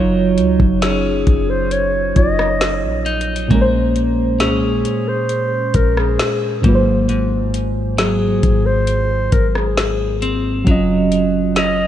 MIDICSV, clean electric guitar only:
0, 0, Header, 1, 2, 480
1, 0, Start_track
1, 0, Tempo, 895522
1, 1879, Time_signature, 4, 2, 24, 8
1, 6364, End_track
2, 0, Start_track
2, 0, Title_t, "Clean electric guitar"
2, 0, Program_c, 0, 27
2, 0, Note_on_c, 0, 54, 84
2, 0, Note_on_c, 0, 61, 63
2, 0, Note_on_c, 0, 63, 64
2, 434, Note_off_c, 0, 61, 0
2, 440, Note_on_c, 0, 61, 64
2, 1633, Note_off_c, 0, 63, 0
2, 1640, Note_on_c, 0, 63, 65
2, 1878, Note_off_c, 0, 54, 0
2, 1881, Note_on_c, 0, 58, 84
2, 1927, Note_off_c, 0, 63, 0
2, 2316, Note_off_c, 0, 61, 0
2, 2359, Note_on_c, 0, 61, 62
2, 3561, Note_on_c, 0, 44, 81
2, 3607, Note_off_c, 0, 61, 0
2, 3757, Note_off_c, 0, 58, 0
2, 3794, Note_off_c, 0, 44, 0
2, 3800, Note_on_c, 0, 44, 80
2, 4280, Note_on_c, 0, 54, 62
2, 5479, Note_on_c, 0, 60, 64
2, 5718, Note_off_c, 0, 54, 0
2, 5720, Note_off_c, 0, 44, 0
2, 5720, Note_on_c, 0, 54, 81
2, 5767, Note_off_c, 0, 60, 0
2, 6199, Note_on_c, 0, 61, 62
2, 6364, Note_off_c, 0, 54, 0
2, 6364, Note_off_c, 0, 61, 0
2, 6364, End_track
0, 0, End_of_file